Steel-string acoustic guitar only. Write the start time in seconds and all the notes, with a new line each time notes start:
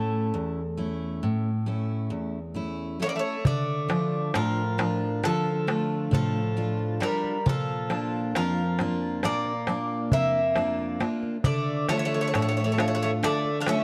Already playing: A2 A3 C#4 E4
0.34 E2
0.77 A3 C#4 E4
1.23 A2
1.66 A3 C#4 E4
2.10 E2
2.54 A3 C#4 E4
2.99 A3 C#4 E4
3.45 D3
3.88 F3 D4 F4
4.35 A2
4.78 F3 D4 F4
5.23 D3
5.67 A3 D4 F4
6.11 A2
6.57 F3 D4 F4
7.01 D4 F4
7.46 A#2
7.90 A#3 D4 F4
8.36 F2
8.80 A#3 D4 F4
9.24 A#2
9.68 A#3 D4 F4
10.12 F2
10.56 A#3 D4 F4
11.00 A#3 D4 F4
11.45 D3
11.89 A3 D4 F4
12.34 A2
12.78 A3 D4 F4
13.23 D3
13.67 A3 F4